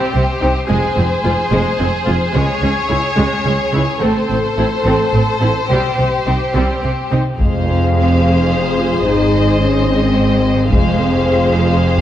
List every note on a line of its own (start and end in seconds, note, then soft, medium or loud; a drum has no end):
0.00 0.13 G3 soft
0.00 0.13 C4 soft
0.00 0.67 G4 soft
0.00 0.66 C5 soft
0.14 0.23 C2 soft
0.14 0.23 C3 soft
0.14 0.22 C4 soft
0.41 0.51 C2 soft
0.41 0.51 C3 soft
0.41 0.49 C4 soft
0.41 0.49 D#4 soft
0.69 0.78 F1 medium
0.69 0.78 F2 medium
0.69 0.95 G#3 soft
0.69 3.98 G#4 soft
0.69 2.32 C5 soft
0.96 1.06 F1 soft
0.96 1.06 F2 soft
0.96 1.05 G#3 soft
0.96 1.04 C4 soft
1.24 1.33 F1 soft
1.24 1.33 F2 soft
1.24 1.33 G#3 soft
1.24 1.32 F4 soft
1.52 1.60 F1 medium
1.52 1.61 F2 medium
1.52 1.78 G#3 medium
1.79 1.88 F1 soft
1.79 1.88 F2 soft
1.79 1.87 G#3 soft
1.79 1.87 C4 soft
2.06 2.15 F1 soft
2.06 2.16 F2 soft
2.06 2.14 G#3 soft
2.06 2.14 F4 soft
2.34 2.43 C#2 medium
2.34 2.60 G#3 soft
2.34 4.01 C#5 soft
2.62 2.70 C#2 soft
2.62 2.71 C#2 soft
2.62 2.70 G#3 soft
2.62 2.71 C#4 soft
2.89 2.97 C#2 soft
2.89 2.98 C#2 soft
2.89 2.97 G#3 soft
2.89 2.97 E4 soft
3.17 3.25 C#2 medium
3.17 3.26 C#2 medium
3.17 3.43 G#3 medium
3.45 3.54 C#2 soft
3.45 3.53 G#3 soft
3.45 3.53 C#4 soft
3.73 3.82 C#2 soft
3.73 3.81 G#3 soft
3.73 3.81 E4 soft
4.01 4.09 A1 soft
4.01 4.10 A2 medium
4.01 4.27 A3 soft
4.01 4.27 C4 soft
4.01 5.67 A4 medium
4.01 7.20 C5 soft
4.29 4.37 A1 soft
4.29 4.38 A2 soft
4.29 4.37 C4 soft
4.57 4.65 A1 soft
4.57 4.66 A2 soft
4.57 4.65 C4 soft
4.57 4.66 E4 soft
4.86 4.94 A1 medium
4.86 4.94 A2 medium
4.86 5.11 A3 soft
4.86 5.12 C4 soft
5.13 5.21 A1 soft
5.13 5.22 A2 soft
5.13 5.21 C4 soft
5.41 5.49 A1 soft
5.41 5.50 A2 soft
5.41 5.49 C4 soft
5.41 5.50 E4 soft
5.69 5.77 C2 soft
5.69 5.78 C3 soft
5.69 5.97 G3 soft
5.69 5.96 C4 soft
5.69 7.17 G4 soft
5.98 6.06 C2 soft
5.98 6.06 C3 soft
5.98 6.07 C4 soft
6.27 6.35 C2 soft
6.27 6.35 C3 soft
6.27 6.35 C4 soft
6.27 6.35 D#4 soft
6.55 6.63 C2 soft
6.55 6.64 C3 soft
6.55 6.81 G3 soft
6.55 6.81 C4 soft
6.83 6.91 C2 soft
6.83 6.92 C3 soft
6.83 6.91 C4 soft
7.11 7.20 C2 soft
7.11 7.20 C3 soft
7.11 7.19 C4 soft
7.11 7.19 D#4 soft
7.39 9.02 F1 soft
7.39 9.02 F2 soft
7.39 7.66 G#3 soft
7.39 10.68 G#4 soft
7.39 10.69 C5 soft
7.39 9.02 F5 soft
7.39 taiko soft
7.67 8.22 C4 medium
8.23 8.77 C4 medium
8.79 9.06 F4 soft
9.05 10.69 G#1 soft
9.05 10.69 G#2 soft
9.05 9.61 D#4 medium
9.05 10.69 D#5 soft
9.60 9.88 C#4 medium
9.89 10.72 C4 medium
10.72 12.01 F1 soft
10.72 12.01 F2 soft
10.72 11.00 G#3 medium
10.72 12.01 G#4 soft
10.72 12.01 C5 soft
10.72 12.01 F5 soft
10.72 taiko medium
10.99 11.53 C4 medium
11.54 12.01 C4 medium
11.96 taiko soft